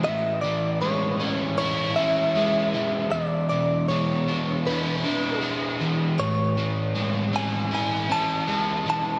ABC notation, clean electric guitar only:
X:1
M:4/4
L:1/8
Q:1/4=78
K:A
V:1 name="Clean electric guitar"
e d c2 c e3 | d d c2 B2 z2 | c3 g g a2 a |]